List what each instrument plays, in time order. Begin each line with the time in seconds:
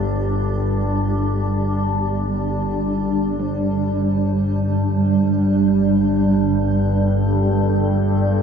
Already playing: synth drone G1 G2, ambient pad G3 D4 G4, synth texture A4
3.39 synth drone G1 G2, singing bowl G3, synth texture G4
6.39 ambient pad A4